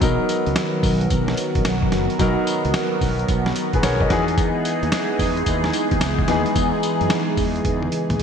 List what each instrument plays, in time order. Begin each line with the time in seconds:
Already playing: analog synth pad B3
0.01 fretless electric bass B1, analog synth pad D#3 F#3 F#4 A#4, grand piano F#3 B3 D#4 A#4, kick, closed hi-hat, tambourine
0.29 closed hi-hat, tambourine
0.46 fretless electric bass C#2, closed hi-hat
0.56 snare, closed hi-hat, tambourine
0.83 fretless electric bass B1, kick, open hi-hat, tambourine
1.01 closed hi-hat
1.10 fretless electric bass B1, kick, closed hi-hat, tambourine
1.28 snare
1.37 closed hi-hat, tambourine
1.55 fretless electric bass A#1, kick, closed hi-hat
1.65 fretless electric bass B1, snare, closed hi-hat, tambourine
1.82 kick
1.92 fretless electric bass F#1, snare, closed hi-hat
2.10 closed hi-hat
2.19 fretless electric bass B1, grand piano F#3 B3 D#4 A#4, kick, closed hi-hat, tambourine
2.47 closed hi-hat, tambourine
2.65 fretless electric bass C#2, closed hi-hat
2.74 snare, closed hi-hat, tambourine
3.01 fretless electric bass B1, kick, open hi-hat, tambourine
3.19 closed hi-hat
3.28 fretless electric bass B1, kick, closed hi-hat, tambourine
3.46 snare
3.56 closed hi-hat, tambourine
3.73 fretless electric bass A#1, grand piano G#4 B4, kick, closed hi-hat
3.83 fretless electric bass B1, grand piano A#4 C#5, snare, closed hi-hat, tambourine
4.01 grand piano B4 D#5, kick
4.10 fretless electric bass E2, grand piano E3 B3 D#4 G#4, analog synth pad E3 G#3 D#4 G#4, kick, snare, closed hi-hat
4.28 closed hi-hat
4.38 kick, closed hi-hat, tambourine
4.65 closed hi-hat, tambourine
4.83 fretless electric bass D#2, closed hi-hat
4.92 snare, closed hi-hat, tambourine
5.19 fretless electric bass E2, kick, open hi-hat, tambourine
5.37 closed hi-hat
5.46 fretless electric bass D#2, kick, closed hi-hat, tambourine
5.64 snare
5.73 closed hi-hat, tambourine
5.91 fretless electric bass D#2, kick, closed hi-hat
6.01 fretless electric bass C#2, snare, closed hi-hat, tambourine
6.19 kick
6.28 fretless electric bass D#2, grand piano E3 B3 D#4 G#4, snare, closed hi-hat
6.46 closed hi-hat
6.56 fretless electric bass E2, kick, closed hi-hat, tambourine
6.83 closed hi-hat, tambourine
7.01 fretless electric bass F#2, closed hi-hat
7.10 snare, closed hi-hat, tambourine
7.37 fretless electric bass E2, kick, open hi-hat, tambourine
7.56 closed hi-hat
7.65 fretless electric bass E2, kick, closed hi-hat, high tom
7.83 high tom
7.92 closed hi-hat
8.10 fretless electric bass D#2, closed hi-hat, mid tom
8.19 fretless electric bass E2, closed hi-hat